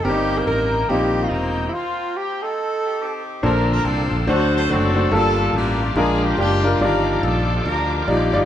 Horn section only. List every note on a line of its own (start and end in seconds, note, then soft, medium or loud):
0.06 0.86 A#3 medium
0.06 0.47 D#4 medium
0.06 0.40 G4 medium
0.40 0.47 A#4 medium
0.48 0.90 D#4 medium
0.48 0.87 A#4 medium
0.90 1.31 A#3 medium
0.90 1.32 D#4 medium
0.90 1.24 G4 medium
1.25 1.32 F4 medium
1.33 1.71 A#3 medium
1.33 1.72 C4 medium
1.33 1.75 D#4 medium
1.75 2.55 A#3 medium
1.75 2.42 C4 medium
1.75 2.14 F4 medium
2.18 2.43 G4 medium
2.43 3.01 C4 medium
2.43 3.01 D#4 medium
2.43 3.27 A4 medium
2.85 3.00 G4 medium
3.02 3.41 C4 medium
3.02 3.41 D#4 medium
3.02 3.41 G4 medium
3.44 3.83 D4 medium
3.44 4.25 F4 medium
3.44 3.68 A#4 medium
3.70 3.85 A#4 medium
3.84 4.24 C4 medium
3.84 4.24 D4 medium
3.84 4.27 A4 medium
4.28 4.69 F#4 medium
4.28 4.70 A4 medium
4.28 4.54 C5 medium
4.55 4.69 C5 loud
4.71 5.10 C4 medium
4.71 5.10 F#4 medium
4.71 5.13 A4 loud
5.13 5.54 D4 medium
5.13 5.93 F4 medium
5.13 5.52 A4 loud
5.55 5.94 A#3 medium
5.55 5.94 D4 medium
5.55 5.97 G4 medium
5.97 6.37 D4 medium
5.97 6.77 F4 medium
5.97 6.23 G#4 loud
6.22 6.38 G4 loud
6.38 6.78 D4 medium
6.38 6.78 G4 loud
6.80 7.20 D4 medium
6.80 7.20 D#4 medium
6.80 7.05 A#4 loud
7.07 7.22 A#4 medium
7.22 7.64 D4 medium
7.22 7.64 D#4 medium
7.22 7.65 A4 loud
7.65 8.08 D4 medium
7.65 8.45 D#4 medium
7.65 7.90 A#4 medium
7.94 8.08 A#4 medium
8.09 8.45 A#3 medium
8.09 8.45 D4 medium
8.09 8.45 G4 loud